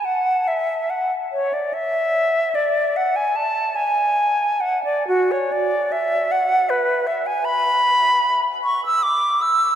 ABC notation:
X:1
M:3/4
L:1/16
Q:1/4=75
K:Emix
V:1 name="Flute"
f2 e2 f2 c d e4 | d2 f g a2 g4 f d | F c d2 e2 f2 B2 e g | b6 c' e' d'2 e'2 |]